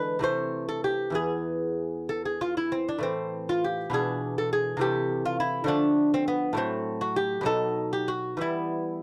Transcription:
Already playing: D3 E3 G#3 B4
0.19 C3 E3 A3
0.24 C5
0.69 A4
0.84 G4
1.10 E2 E3 B3
1.15 G#4
2.09 A4
2.25 G#4
2.41 F4
2.57 E4
2.72 C4
2.88 D4
2.99 A2 E3
3.03 C4
3.49 F4
3.64 G4
3.90 B2 E3 D4
3.94 G#4
4.38 A4
4.53 G#4
4.77 C3 E3 A3
4.81 G4
5.25 F4
5.40 E4
5.64 D3 F3 A3
5.68 D4
6.14 C4
6.28 B3
6.53 A2 F#3 A3
6.57 C4
7.01 F#4
7.16 G4
7.41 B2 F#3 D#4
7.46 A4
7.93 G4
8.08 F#4
8.37 E3 G3 B3
8.41 E4

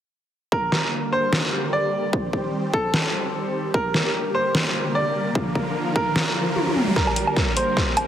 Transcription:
0.52 D3 G3 A#4, kick
0.72 snare
1.12 C5
1.33 snare
1.73 D5
2.13 D#3 C4 C5, kick
2.33 kick
2.73 A4, kick
2.94 snare
3.74 A#3 A#4, kick, riser
3.94 snare
4.35 C5
4.55 snare
4.95 D5
5.35 F3 F4, kick
5.55 kick
5.96 A#4, kick
6.16 snare
6.56 high tom
6.67 high tom
6.76 mid tom
6.87 mid tom
6.96 D3 G3 G4 A#4, kick, snare, riser
7.07 low woodblock
7.16 closed hi-hat
7.27 low woodblock
7.36 kick, snare
7.57 C5, closed hi-hat
7.77 kick, snare
7.97 closed hi-hat, low woodblock

